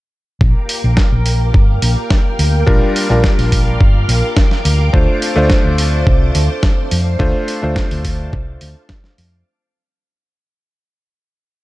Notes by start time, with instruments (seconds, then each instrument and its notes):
0.41 fingered electric bass A#1, string machine A#4 F5 G5 D6, kick
0.69 open hi-hat
0.84 fingered electric bass A#1
0.97 kick, snare
1.12 fingered electric bass A#1
1.26 open hi-hat
1.54 fingered electric bass G1, kick
1.82 fingered electric bass A#1, open hi-hat
2.10 kick, snare
2.39 fingered electric bass D2, open hi-hat
2.66 fingered electric bass A#1, electric grand piano G3 D4 F4 A#4, kick
2.96 open hi-hat
3.09 fingered electric bass A#1, electric grand piano G3 D4 F4 A#4
3.24 kick, snare
3.39 fingered electric bass A#1, open hi-hat
3.52 kick, open hi-hat
3.81 fingered electric bass G1, kick
4.08 fingered electric bass A#1, open hi-hat
4.37 kick, snare
4.51 snare
4.65 fingered electric bass D2, open hi-hat
4.93 fingered electric bass D2, electric grand piano A3 D4 F4 C5, string machine C5 A5, kick
5.22 open hi-hat
5.36 fingered electric bass D2, electric grand piano A3 D4 F4 C5
5.50 kick, snare
5.65 fingered electric bass D2
5.78 open hi-hat
6.07 fingered electric bass C2, kick
6.35 fingered electric bass D2, open hi-hat
6.63 kick, snare
6.91 fingered electric bass F2, open hi-hat
7.19 fingered electric bass D2, electric grand piano A3 D4 F4 C5, kick
7.48 open hi-hat
7.62 fingered electric bass D2, electric grand piano A3 D4 F4 C5
7.76 kick, snare
7.91 fingered electric bass D2, open hi-hat
8.05 kick, open hi-hat
8.33 fingered electric bass C2, kick
8.61 fingered electric bass D2, open hi-hat
8.89 kick, snare
9.04 snare
9.18 fingered electric bass F2, open hi-hat